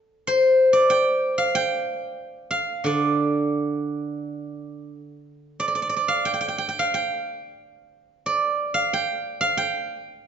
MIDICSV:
0, 0, Header, 1, 2, 480
1, 0, Start_track
1, 0, Tempo, 645161
1, 202, Time_signature, 4, 2, 24, 8
1, 2125, Tempo, 683371
1, 4525, Tempo, 652884
1, 7465, End_track
2, 0, Start_track
2, 0, Title_t, "Guzheng"
2, 0, Program_c, 0, 107
2, 203, Note_on_c, 0, 72, 88
2, 543, Note_on_c, 0, 74, 96
2, 669, Note_on_c, 0, 79, 109
2, 1026, Note_on_c, 0, 77, 94
2, 1150, Note_off_c, 0, 79, 0
2, 1153, Note_on_c, 0, 79, 109
2, 1678, Note_off_c, 0, 72, 0
2, 1862, Note_off_c, 0, 77, 0
2, 1865, Note_on_c, 0, 77, 81
2, 1917, Note_off_c, 0, 74, 0
2, 2113, Note_on_c, 0, 50, 62
2, 2128, Note_on_c, 0, 74, 74
2, 2299, Note_off_c, 0, 79, 0
2, 3051, Note_off_c, 0, 77, 0
2, 3541, Note_off_c, 0, 74, 0
2, 3562, Note_off_c, 0, 50, 0
2, 4050, Note_on_c, 0, 74, 78
2, 4104, Note_off_c, 0, 74, 0
2, 4107, Note_on_c, 0, 74, 53
2, 4155, Note_off_c, 0, 74, 0
2, 4158, Note_on_c, 0, 74, 58
2, 4205, Note_off_c, 0, 74, 0
2, 4207, Note_on_c, 0, 74, 55
2, 4256, Note_off_c, 0, 74, 0
2, 4259, Note_on_c, 0, 74, 64
2, 4306, Note_off_c, 0, 74, 0
2, 4309, Note_on_c, 0, 74, 56
2, 4391, Note_on_c, 0, 77, 83
2, 4510, Note_on_c, 0, 79, 94
2, 4568, Note_off_c, 0, 79, 0
2, 4571, Note_on_c, 0, 79, 66
2, 4621, Note_off_c, 0, 79, 0
2, 4623, Note_on_c, 0, 79, 82
2, 4677, Note_off_c, 0, 79, 0
2, 4680, Note_on_c, 0, 79, 67
2, 4750, Note_off_c, 0, 79, 0
2, 4753, Note_on_c, 0, 79, 78
2, 4826, Note_off_c, 0, 79, 0
2, 4829, Note_on_c, 0, 79, 73
2, 4903, Note_off_c, 0, 77, 0
2, 4906, Note_on_c, 0, 77, 93
2, 5013, Note_off_c, 0, 79, 0
2, 5016, Note_on_c, 0, 79, 87
2, 5656, Note_off_c, 0, 74, 0
2, 5987, Note_on_c, 0, 74, 80
2, 6132, Note_off_c, 0, 77, 0
2, 6158, Note_off_c, 0, 79, 0
2, 6340, Note_on_c, 0, 77, 100
2, 6481, Note_on_c, 0, 79, 102
2, 6827, Note_off_c, 0, 77, 0
2, 6830, Note_on_c, 0, 77, 104
2, 6949, Note_off_c, 0, 79, 0
2, 6952, Note_on_c, 0, 79, 99
2, 7344, Note_off_c, 0, 74, 0
2, 7465, Note_off_c, 0, 77, 0
2, 7465, Note_off_c, 0, 79, 0
2, 7465, End_track
0, 0, End_of_file